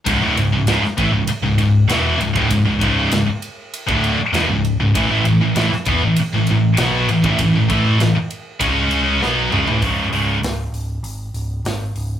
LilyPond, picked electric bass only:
\new Staff \with { instrumentName = "Picked electric bass" } { \clef bass \time 4/4 \key cis \minor \tempo 4 = 98 cis,,16 d,,16 cis,,16 cis,,16 cis,,16 r16 a,,16 cis,,16 r16 cis,,16 cis,,8 e,,8 cis,,16 d,,16 | cis,,16 cis,,16 cis,,8 cis,,16 r4 d,,8 r16 e,,16 cis,,8 cis,,16 | a,,16 a,,16 a,,16 a,,16 a,,16 r16 e,16 a,,16 r16 a,,16 a,,8 b,,8 a,,16 a,,16 | a,,16 a,,16 a,,8 a,,16 r8. cis,4 b,,8 cis,16 a,,16 |
cis,,8 cis,,8 cis,,8 cis,,8 gis,,8 cis,,8 gis,,8 cis,,8 | }